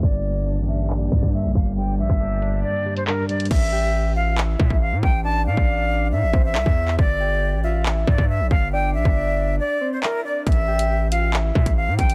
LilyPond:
<<
  \new Staff \with { instrumentName = "Flute" } { \time 4/4 \key g \dorian \tempo 4 = 138 d''4. e''8 r8 d''8 e''8 f''8 | g''8 e''4. d''8. c''16 bes'8 d''8 | e''4. f''8 r8 e''8 f''8 g''8 | a''8 f''4. e''8. e''4~ e''16 |
d''4. e''8 r8 d''8 e''8 f''8 | g''8 e''4. d''8. c''16 bes'8 d''8 | e''4. f''8 r8 e''8 f''8 g''8 | }
  \new Staff \with { instrumentName = "Soft synth lead" } { \time 4/4 \key g \dorian r1 | r1 | r8 g''4 f''8 e''4 r4 | d''2~ d''8 c''8 e''8 e''8 |
r8 g''4 f''8 e''4 r4 | d''2~ d''8 c''8 e''8 d''8 | r8 g''4 f''8 e''4 r4 | }
  \new Staff \with { instrumentName = "String section" } { \time 4/4 \key g \dorian <d bes g' d''>1~ | <d bes g' d''>1 | r1 | r1 |
r1 | r1 | r1 | }
  \new Staff \with { instrumentName = "Tine electric piano" } { \clef bass \time 4/4 \key g \dorian g,4 d'8 d'4 g8 g,8 g,8 | g,4 d'8 d'4 g8 g,8 g,8 | r1 | r1 |
r1 | r1 | r1 | }
  \new Staff \with { instrumentName = "808-style bass" } { \clef bass \time 4/4 \key g \dorian g,,4~ g,,16 a,,4~ a,,16 g,16 g,8 bes,,16 g,,8~ | g,,8 bes,,16 g,,4~ g,,16 r2 | a,,2~ a,,8 a,16 a,,8 a,16 a,,8~ | a,,8 a,16 a,,4~ a,,16 a,16 a,,16 a,,8 c,16 e,8. |
g,,4~ g,,16 a,,4~ a,,16 g,16 g,8 bes,,16 g,,8~ | g,,8 bes,,16 g,,4~ g,,16 r2 | a,,2~ a,,8 a,16 a,,8 a,16 a,,8 | }
  \new DrumStaff \with { instrumentName = "Drums" } \drummode { \time 4/4 <hh bd>8. hh16 r8 hh8 hc8 bd16 <hh bd>16 r8 <hh bd>16 hh16 | hh8. <hh bd>16 r8 hh8 r8. hh16 hc8 hh16 hh32 hh32 | <cymc hh bd>32 hh8. r32 r4 hc8 bd16 bd16 r8 bd8 | r8. bd16 r4 r8 bd8 hc16 bd8 hc16 |
bd4 r4 hc8 bd16 bd16 r8 bd8 | r8. bd16 r4 r4 hc4 | <hh bd>32 hh8 r32 hh16 r8 hh8 hc8 bd16 <hh bd>16 r8 <hh bd>16 hh16 | }
>>